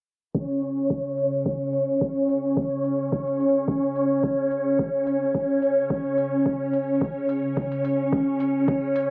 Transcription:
0, 0, Header, 1, 3, 480
1, 0, Start_track
1, 0, Tempo, 555556
1, 299, Time_signature, 4, 2, 24, 8
1, 7866, End_track
2, 0, Start_track
2, 0, Title_t, "String machine"
2, 0, Program_c, 0, 50
2, 304, Note_on_c, 0, 61, 76
2, 304, Note_on_c, 0, 73, 74
2, 7866, Note_off_c, 0, 61, 0
2, 7866, Note_off_c, 0, 73, 0
2, 7866, End_track
3, 0, Start_track
3, 0, Title_t, "Drums"
3, 299, Note_on_c, 9, 36, 103
3, 386, Note_off_c, 9, 36, 0
3, 537, Note_on_c, 9, 46, 91
3, 624, Note_off_c, 9, 46, 0
3, 779, Note_on_c, 9, 36, 91
3, 866, Note_off_c, 9, 36, 0
3, 1017, Note_on_c, 9, 46, 90
3, 1104, Note_off_c, 9, 46, 0
3, 1259, Note_on_c, 9, 36, 106
3, 1346, Note_off_c, 9, 36, 0
3, 1496, Note_on_c, 9, 46, 91
3, 1583, Note_off_c, 9, 46, 0
3, 1739, Note_on_c, 9, 36, 94
3, 1826, Note_off_c, 9, 36, 0
3, 1979, Note_on_c, 9, 46, 94
3, 2065, Note_off_c, 9, 46, 0
3, 2219, Note_on_c, 9, 36, 108
3, 2306, Note_off_c, 9, 36, 0
3, 2458, Note_on_c, 9, 46, 95
3, 2545, Note_off_c, 9, 46, 0
3, 2699, Note_on_c, 9, 36, 97
3, 2785, Note_off_c, 9, 36, 0
3, 2827, Note_on_c, 9, 46, 58
3, 2914, Note_off_c, 9, 46, 0
3, 2939, Note_on_c, 9, 46, 94
3, 3026, Note_off_c, 9, 46, 0
3, 3179, Note_on_c, 9, 36, 109
3, 3265, Note_off_c, 9, 36, 0
3, 3419, Note_on_c, 9, 46, 97
3, 3505, Note_off_c, 9, 46, 0
3, 3659, Note_on_c, 9, 36, 98
3, 3745, Note_off_c, 9, 36, 0
3, 3898, Note_on_c, 9, 46, 95
3, 3985, Note_off_c, 9, 46, 0
3, 4139, Note_on_c, 9, 36, 112
3, 4225, Note_off_c, 9, 36, 0
3, 4378, Note_on_c, 9, 46, 100
3, 4464, Note_off_c, 9, 46, 0
3, 4619, Note_on_c, 9, 36, 97
3, 4705, Note_off_c, 9, 36, 0
3, 4857, Note_on_c, 9, 46, 98
3, 4944, Note_off_c, 9, 46, 0
3, 5099, Note_on_c, 9, 36, 114
3, 5185, Note_off_c, 9, 36, 0
3, 5338, Note_on_c, 9, 46, 99
3, 5424, Note_off_c, 9, 46, 0
3, 5580, Note_on_c, 9, 36, 99
3, 5666, Note_off_c, 9, 36, 0
3, 5818, Note_on_c, 9, 46, 97
3, 5904, Note_off_c, 9, 46, 0
3, 6060, Note_on_c, 9, 36, 110
3, 6146, Note_off_c, 9, 36, 0
3, 6298, Note_on_c, 9, 46, 97
3, 6385, Note_off_c, 9, 46, 0
3, 6540, Note_on_c, 9, 36, 98
3, 6626, Note_off_c, 9, 36, 0
3, 6667, Note_on_c, 9, 46, 58
3, 6754, Note_off_c, 9, 46, 0
3, 6779, Note_on_c, 9, 46, 98
3, 6865, Note_off_c, 9, 46, 0
3, 7020, Note_on_c, 9, 36, 113
3, 7106, Note_off_c, 9, 36, 0
3, 7259, Note_on_c, 9, 46, 98
3, 7345, Note_off_c, 9, 46, 0
3, 7500, Note_on_c, 9, 36, 98
3, 7586, Note_off_c, 9, 36, 0
3, 7738, Note_on_c, 9, 46, 98
3, 7825, Note_off_c, 9, 46, 0
3, 7866, End_track
0, 0, End_of_file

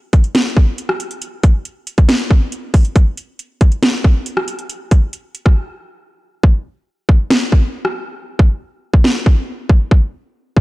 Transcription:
0, 0, Header, 1, 2, 480
1, 0, Start_track
1, 0, Tempo, 434783
1, 1344, Time_signature, 4, 2, 24, 8
1, 11711, End_track
2, 0, Start_track
2, 0, Title_t, "Drums"
2, 143, Note_on_c, 9, 42, 71
2, 144, Note_on_c, 9, 36, 97
2, 254, Note_off_c, 9, 42, 0
2, 255, Note_off_c, 9, 36, 0
2, 264, Note_on_c, 9, 42, 42
2, 374, Note_off_c, 9, 42, 0
2, 383, Note_on_c, 9, 42, 79
2, 384, Note_on_c, 9, 38, 121
2, 494, Note_off_c, 9, 38, 0
2, 494, Note_off_c, 9, 42, 0
2, 625, Note_on_c, 9, 36, 92
2, 735, Note_off_c, 9, 36, 0
2, 863, Note_on_c, 9, 42, 88
2, 974, Note_off_c, 9, 42, 0
2, 984, Note_on_c, 9, 37, 94
2, 1094, Note_off_c, 9, 37, 0
2, 1103, Note_on_c, 9, 42, 84
2, 1214, Note_off_c, 9, 42, 0
2, 1223, Note_on_c, 9, 42, 46
2, 1334, Note_off_c, 9, 42, 0
2, 1343, Note_on_c, 9, 42, 88
2, 1453, Note_off_c, 9, 42, 0
2, 1584, Note_on_c, 9, 36, 102
2, 1584, Note_on_c, 9, 42, 85
2, 1694, Note_off_c, 9, 42, 0
2, 1695, Note_off_c, 9, 36, 0
2, 1824, Note_on_c, 9, 42, 79
2, 1934, Note_off_c, 9, 42, 0
2, 2063, Note_on_c, 9, 42, 68
2, 2174, Note_off_c, 9, 42, 0
2, 2183, Note_on_c, 9, 42, 43
2, 2185, Note_on_c, 9, 36, 100
2, 2294, Note_off_c, 9, 42, 0
2, 2295, Note_off_c, 9, 36, 0
2, 2303, Note_on_c, 9, 42, 80
2, 2304, Note_on_c, 9, 38, 120
2, 2414, Note_off_c, 9, 38, 0
2, 2414, Note_off_c, 9, 42, 0
2, 2545, Note_on_c, 9, 36, 92
2, 2655, Note_off_c, 9, 36, 0
2, 2783, Note_on_c, 9, 42, 86
2, 2894, Note_off_c, 9, 42, 0
2, 3023, Note_on_c, 9, 36, 107
2, 3023, Note_on_c, 9, 42, 89
2, 3024, Note_on_c, 9, 46, 91
2, 3133, Note_off_c, 9, 36, 0
2, 3134, Note_off_c, 9, 42, 0
2, 3134, Note_off_c, 9, 46, 0
2, 3144, Note_on_c, 9, 42, 49
2, 3254, Note_off_c, 9, 42, 0
2, 3263, Note_on_c, 9, 36, 123
2, 3263, Note_on_c, 9, 42, 86
2, 3373, Note_off_c, 9, 42, 0
2, 3374, Note_off_c, 9, 36, 0
2, 3504, Note_on_c, 9, 42, 85
2, 3614, Note_off_c, 9, 42, 0
2, 3744, Note_on_c, 9, 42, 76
2, 3854, Note_off_c, 9, 42, 0
2, 3984, Note_on_c, 9, 36, 98
2, 3984, Note_on_c, 9, 42, 72
2, 4094, Note_off_c, 9, 42, 0
2, 4095, Note_off_c, 9, 36, 0
2, 4103, Note_on_c, 9, 42, 41
2, 4214, Note_off_c, 9, 42, 0
2, 4223, Note_on_c, 9, 42, 79
2, 4224, Note_on_c, 9, 38, 125
2, 4334, Note_off_c, 9, 38, 0
2, 4334, Note_off_c, 9, 42, 0
2, 4465, Note_on_c, 9, 36, 88
2, 4575, Note_off_c, 9, 36, 0
2, 4703, Note_on_c, 9, 42, 90
2, 4814, Note_off_c, 9, 42, 0
2, 4824, Note_on_c, 9, 37, 94
2, 4934, Note_off_c, 9, 37, 0
2, 4943, Note_on_c, 9, 42, 86
2, 5054, Note_off_c, 9, 42, 0
2, 5064, Note_on_c, 9, 42, 46
2, 5174, Note_off_c, 9, 42, 0
2, 5184, Note_on_c, 9, 42, 88
2, 5294, Note_off_c, 9, 42, 0
2, 5424, Note_on_c, 9, 42, 87
2, 5425, Note_on_c, 9, 36, 99
2, 5535, Note_off_c, 9, 36, 0
2, 5535, Note_off_c, 9, 42, 0
2, 5663, Note_on_c, 9, 42, 78
2, 5774, Note_off_c, 9, 42, 0
2, 5902, Note_on_c, 9, 42, 68
2, 6013, Note_off_c, 9, 42, 0
2, 6023, Note_on_c, 9, 37, 62
2, 6025, Note_on_c, 9, 36, 97
2, 6133, Note_off_c, 9, 37, 0
2, 6135, Note_off_c, 9, 36, 0
2, 7103, Note_on_c, 9, 36, 117
2, 7214, Note_off_c, 9, 36, 0
2, 7824, Note_on_c, 9, 36, 93
2, 7935, Note_off_c, 9, 36, 0
2, 8064, Note_on_c, 9, 38, 114
2, 8174, Note_off_c, 9, 38, 0
2, 8305, Note_on_c, 9, 36, 87
2, 8415, Note_off_c, 9, 36, 0
2, 8664, Note_on_c, 9, 37, 92
2, 8774, Note_off_c, 9, 37, 0
2, 9265, Note_on_c, 9, 36, 101
2, 9375, Note_off_c, 9, 36, 0
2, 9865, Note_on_c, 9, 36, 93
2, 9975, Note_off_c, 9, 36, 0
2, 9983, Note_on_c, 9, 38, 114
2, 10094, Note_off_c, 9, 38, 0
2, 10224, Note_on_c, 9, 36, 90
2, 10335, Note_off_c, 9, 36, 0
2, 10703, Note_on_c, 9, 36, 106
2, 10813, Note_off_c, 9, 36, 0
2, 10943, Note_on_c, 9, 36, 115
2, 11054, Note_off_c, 9, 36, 0
2, 11664, Note_on_c, 9, 36, 92
2, 11711, Note_off_c, 9, 36, 0
2, 11711, End_track
0, 0, End_of_file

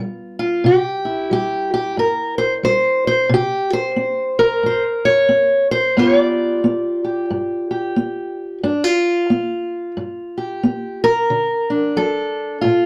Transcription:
0, 0, Header, 1, 2, 480
1, 0, Start_track
1, 0, Tempo, 665927
1, 465, Time_signature, 4, 2, 24, 8
1, 9268, End_track
2, 0, Start_track
2, 0, Title_t, "Steel-string acoustic guitar"
2, 0, Program_c, 0, 25
2, 0, Note_on_c, 0, 55, 61
2, 0, Note_on_c, 0, 59, 48
2, 0, Note_on_c, 0, 65, 42
2, 0, Note_on_c, 0, 71, 52
2, 274, Note_off_c, 0, 65, 0
2, 282, Note_on_c, 0, 65, 80
2, 426, Note_off_c, 0, 55, 0
2, 446, Note_off_c, 0, 59, 0
2, 449, Note_off_c, 0, 71, 0
2, 462, Note_on_c, 0, 48, 72
2, 469, Note_off_c, 0, 65, 0
2, 476, Note_on_c, 0, 67, 81
2, 756, Note_on_c, 0, 64, 48
2, 905, Note_off_c, 0, 48, 0
2, 944, Note_on_c, 0, 55, 60
2, 947, Note_off_c, 0, 67, 0
2, 956, Note_on_c, 0, 67, 84
2, 1239, Note_off_c, 0, 67, 0
2, 1252, Note_on_c, 0, 67, 83
2, 1386, Note_off_c, 0, 55, 0
2, 1421, Note_on_c, 0, 43, 63
2, 1432, Note_off_c, 0, 67, 0
2, 1435, Note_on_c, 0, 70, 90
2, 1713, Note_off_c, 0, 70, 0
2, 1716, Note_on_c, 0, 72, 89
2, 1826, Note_off_c, 0, 72, 0
2, 1864, Note_off_c, 0, 43, 0
2, 1897, Note_on_c, 0, 55, 61
2, 1908, Note_on_c, 0, 72, 102
2, 2194, Note_off_c, 0, 72, 0
2, 2215, Note_on_c, 0, 72, 95
2, 2342, Note_off_c, 0, 55, 0
2, 2362, Note_off_c, 0, 64, 0
2, 2374, Note_on_c, 0, 48, 81
2, 2395, Note_off_c, 0, 72, 0
2, 2406, Note_on_c, 0, 67, 90
2, 2683, Note_off_c, 0, 67, 0
2, 2691, Note_on_c, 0, 72, 96
2, 2820, Note_off_c, 0, 48, 0
2, 2857, Note_on_c, 0, 60, 58
2, 3164, Note_on_c, 0, 70, 100
2, 3301, Note_off_c, 0, 60, 0
2, 3339, Note_on_c, 0, 43, 67
2, 3352, Note_off_c, 0, 72, 0
2, 3361, Note_on_c, 0, 72, 95
2, 3476, Note_off_c, 0, 72, 0
2, 3641, Note_on_c, 0, 73, 110
2, 3782, Note_off_c, 0, 43, 0
2, 3811, Note_on_c, 0, 60, 62
2, 3828, Note_off_c, 0, 70, 0
2, 4115, Note_off_c, 0, 73, 0
2, 4118, Note_on_c, 0, 72, 102
2, 4258, Note_off_c, 0, 60, 0
2, 4301, Note_on_c, 0, 43, 74
2, 4305, Note_on_c, 0, 59, 50
2, 4306, Note_off_c, 0, 72, 0
2, 4312, Note_on_c, 0, 65, 54
2, 4316, Note_on_c, 0, 67, 52
2, 4320, Note_on_c, 0, 73, 99
2, 4457, Note_off_c, 0, 73, 0
2, 4457, Note_on_c, 0, 74, 99
2, 4743, Note_off_c, 0, 43, 0
2, 4782, Note_off_c, 0, 59, 0
2, 4785, Note_on_c, 0, 59, 65
2, 5075, Note_off_c, 0, 67, 0
2, 5078, Note_on_c, 0, 67, 42
2, 5225, Note_off_c, 0, 59, 0
2, 5265, Note_on_c, 0, 43, 66
2, 5547, Note_off_c, 0, 67, 0
2, 5556, Note_on_c, 0, 67, 48
2, 5704, Note_off_c, 0, 43, 0
2, 5740, Note_on_c, 0, 59, 65
2, 6182, Note_off_c, 0, 59, 0
2, 6200, Note_off_c, 0, 67, 0
2, 6202, Note_off_c, 0, 65, 0
2, 6223, Note_on_c, 0, 43, 77
2, 6225, Note_on_c, 0, 62, 54
2, 6371, Note_off_c, 0, 62, 0
2, 6371, Note_on_c, 0, 65, 43
2, 6664, Note_off_c, 0, 43, 0
2, 6703, Note_on_c, 0, 59, 62
2, 6708, Note_off_c, 0, 74, 0
2, 7143, Note_off_c, 0, 59, 0
2, 7185, Note_on_c, 0, 43, 62
2, 7479, Note_on_c, 0, 67, 51
2, 7624, Note_off_c, 0, 43, 0
2, 7665, Note_on_c, 0, 59, 63
2, 7953, Note_off_c, 0, 67, 0
2, 7956, Note_on_c, 0, 70, 107
2, 8105, Note_off_c, 0, 59, 0
2, 8144, Note_off_c, 0, 65, 0
2, 8145, Note_on_c, 0, 50, 73
2, 8433, Note_off_c, 0, 70, 0
2, 8433, Note_on_c, 0, 62, 50
2, 8585, Note_off_c, 0, 50, 0
2, 8624, Note_on_c, 0, 54, 64
2, 8627, Note_on_c, 0, 69, 88
2, 9065, Note_off_c, 0, 54, 0
2, 9090, Note_off_c, 0, 62, 0
2, 9092, Note_on_c, 0, 65, 80
2, 9112, Note_on_c, 0, 45, 61
2, 9268, Note_off_c, 0, 45, 0
2, 9268, Note_off_c, 0, 65, 0
2, 9268, Note_off_c, 0, 69, 0
2, 9268, End_track
0, 0, End_of_file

